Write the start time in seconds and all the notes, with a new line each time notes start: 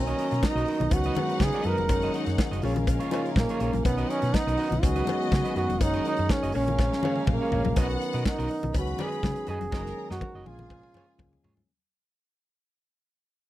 Already playing: B1 B2 D#3 F#3 A#3 B3 C#4 D#4 F#4 A#4 D#5 A#5
0.07 F#4 A#4 D#5, closed hi-hat
0.18 F#4 A#4 D#5, closed hi-hat
0.31 B2, muted clean electric guitar stroke, snare, closed hi-hat
0.43 D#4, muted clean electric guitar stroke, kick, snare, cowbell, high conga
0.55 B1 F#4 A#4 D#5, closed hi-hat
0.65 F#4 A#4 D#5, open hi-hat, muted conga
0.80 B1, muted clean electric guitar stroke, closed hi-hat, low conga
0.91 C#2 C#3 D#3 F#3 G#3 B3 C#4 D#4 F#4 B4 F#5, muted clean electric guitar stroke, kick, closed hi-hat, cowbell
1.04 F#4 B4 D#5, closed hi-hat
1.15 D#3 F#3 G#3 B3 C#4, closed hi-hat, cowbell, muted conga, low conga
1.29 muted clean electric guitar stroke, closed hi-hat
1.40 C#3 G#4, muted clean electric guitar stroke, kick, snare, cowbell, high conga
1.53 F#4 B4 D#5, closed hi-hat
1.63 F#2 D#3 F#3 G#3 B3 D#4 F#4 B4 D#5, closed hi-hat
1.68 A#4
1.77 F1, muted clean electric guitar stroke, closed hi-hat, high conga
1.89 F#1 D#3 F#3 G#3 A3 C#4 D#4 G#4 A#4 C#5 F#5, muted clean electric guitar stroke, kick, closed hi-hat, cowbell, muted conga
1.97 A#3
2.02 F#4 A#4 D#5, closed hi-hat
2.14 F#4 A#4 D#5, closed hi-hat
2.26 F#2, muted clean electric guitar stroke, snare, closed hi-hat
2.38 muted clean electric guitar stroke, kick, snare, cowbell, high conga
2.51 F#1 F#4 A#4 D#5, closed hi-hat
2.62 A#1 C#3 F3 G#3 A#3 C#4 F4 G#4 A#4 C#5 F5, open hi-hat, muted conga
2.76 muted clean electric guitar stroke, closed hi-hat, low conga
2.87 muted clean electric guitar stroke, kick, closed hi-hat, cowbell
3.00 F4 G#4 C#5, closed hi-hat
3.11 C#3 F3 G#3 A#3 D#4 F4 G#4 C#5, closed hi-hat, cowbell, muted conga
3.24 muted clean electric guitar stroke, closed hi-hat
3.36 A#2 A#3, muted clean electric guitar stroke, kick, snare, cowbell, high conga
3.49 F4 G#4 C#5, closed hi-hat
3.60 A#1 C#3 F3 G#3 A#3 C#4 F4 G#4 C#5, closed hi-hat
3.73 A#1, muted clean electric guitar stroke, closed hi-hat, high conga
3.84 B1 D#3 F#3 B3 C#4 D#4 A#4 B4 F#5, muted clean electric guitar stroke, kick, closed hi-hat, cowbell, muted conga
3.98 F#4 A#4 D#5, closed hi-hat
4.09 C#4 F#4 A#4 D#5, closed hi-hat
4.22 B2, muted clean electric guitar stroke, snare, closed hi-hat
4.34 D#4, muted clean electric guitar stroke, kick, snare, cowbell, high conga
4.47 B1 F#4 A#4 D#5, closed hi-hat
4.57 F#4 A#4 D#5, open hi-hat
4.71 B1, muted clean electric guitar stroke, closed hi-hat, low conga
4.82 C#2 C#3 D#3 F#3 G#3 B3 C#4 F#4 G#4 D#5, muted clean electric guitar stroke, kick, closed hi-hat, cowbell
4.96 F#4 B4 D#5, closed hi-hat
5.07 D#3 F#3 G#3 B3 C#4, muted clean electric guitar stroke, closed hi-hat, cowbell, muted conga, low conga
5.20 muted clean electric guitar stroke, closed hi-hat
5.32 C#3, muted clean electric guitar stroke, kick, snare, cowbell, high conga
5.44 F#4 B4 D#5, closed hi-hat
5.55 F#2 D#3 F#3 G#3 B3 D#4 F#4 B4 D#5, closed hi-hat
5.69 F1, muted clean electric guitar stroke, closed hi-hat, high conga
5.80 F#1 D#3 F#3 G#3 A#3 C#4 D#4 G#4 A#4 C#5 F#5, muted clean electric guitar stroke, kick, closed hi-hat, cowbell, muted conga
5.93 F#4 A#4 D#5, closed hi-hat
6.05 D#4 F#4 A#4 D#5, closed hi-hat
6.17 F#2, muted clean electric guitar stroke, closed hi-hat
6.29 C#4, muted clean electric guitar stroke, kick, snare, cowbell, high conga
6.43 F#1 F#4 A#4 D#5, closed hi-hat
6.52 A#1 C#3 F3 G#3 A#3 C#4 G#4 A#4 C#5 F5, open hi-hat
6.56 C#4
6.67 muted clean electric guitar stroke, closed hi-hat, low conga
6.79 muted clean electric guitar stroke, kick, snare, cowbell
6.92 muted clean electric guitar stroke, snare
7.03 C#3 F3 G#3 A#3 C#4 G#4 C#5 F5, cowbell, muted conga, low conga
7.16 G#4 C#5 F5, high tom
7.27 A#2, kick, mid tom, cowbell, high conga
7.32 A#3
7.41 G#4 C#5 F5
7.51 A#1 C#3 F3 G#3 A#3 C#4 G#4 C#5 F5, floor tom
7.65 A#1, muted clean electric guitar stroke, floor tom, high conga
7.75 B1 D#3 F#3 B3 C#4 D#4 F#4 A#4 D#5 F#5, kick, closed hi-hat, cowbell, muted conga
7.80 B3
7.90 muted clean electric guitar stroke, closed hi-hat
8.01 muted clean electric guitar stroke, closed hi-hat
8.13 B2 F#4 A#4 D#5, snare, closed hi-hat
8.25 D#4, kick, snare, cowbell, high conga
8.38 B1 F#4 A#4 D#5, closed hi-hat
8.48 muted clean electric guitar stroke, open hi-hat, muted conga
8.63 B1, muted clean electric guitar stroke, closed hi-hat, low conga
8.74 C#2 C#3 D#3 F#3 G#3 B3 C#4 D#4 F#4 B4 B5, kick, closed hi-hat, cowbell
8.78 F#4
8.87 muted clean electric guitar stroke, closed hi-hat
8.98 F#4 G#4 B4 D#5, closed hi-hat, cowbell, muted conga, low conga
9.12 muted clean electric guitar stroke, closed hi-hat
9.23 C#3 D#3 F#3 G#3 B3 C#4, muted clean electric guitar stroke, kick, snare, cowbell, high conga
9.36 muted clean electric guitar stroke, closed hi-hat
9.47 F#2 F#4 G#4 B4 D#5, closed hi-hat
9.61 F1, muted clean electric guitar stroke, closed hi-hat, high conga
9.71 F#1 D#3 F#3 G#3 A#3 C#4 D#4 F#4 G#4 A#4 D#5 A#5, kick, snare, cowbell, muted conga
9.85 muted clean electric guitar stroke, snare
9.97 muted clean electric guitar stroke
10.10 F#2 F#4 A#4 D#5, snare
10.21 kick, high tom, cowbell, high conga
10.35 F#1 F#4 A#4 D#5
10.45 A#1 C#3 F3 G#3 A#3 C#4 F4 G#4 G#5, muted clean electric guitar stroke, high tom, muted conga
10.59 muted clean electric guitar stroke, mid tom, low conga
10.70 kick, cowbell
10.83 muted clean electric guitar stroke, mid tom
10.94 F4 G#4 C#5, mid tom, cowbell, muted conga
11.08 muted clean electric guitar stroke
11.19 C#2 C#3 F3 G#3 A#3 C#4, muted clean electric guitar stroke, kick, mid tom, cowbell, high conga
11.32 muted clean electric guitar stroke, floor tom
11.43 G#2 F4 G#4 C#5, floor tom
11.56 muted clean electric guitar stroke, floor tom, high conga